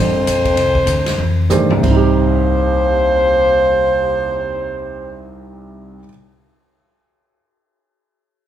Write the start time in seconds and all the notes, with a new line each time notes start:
Already playing: G1 D3 G3 C4 F4 A#4
0.00 F2 C5
0.15 muted upright bass stroke
0.26 A#1, hi-hat pedal, ride
0.45 kick, ride
0.56 C2, ride
0.75 kick
0.86 D2, hi-hat pedal, ride
1.06 snare, ride
1.18 F2, mid tom
1.50 G2 D#3 A3 D4 G4 C5, hi-hat pedal, mid tom
1.70 C2, floor tom
1.78 C3
1.83 C2 D#2 G3 C5, kick, crash
1.91 D#4
1.96 G4
2.04 cymbal swell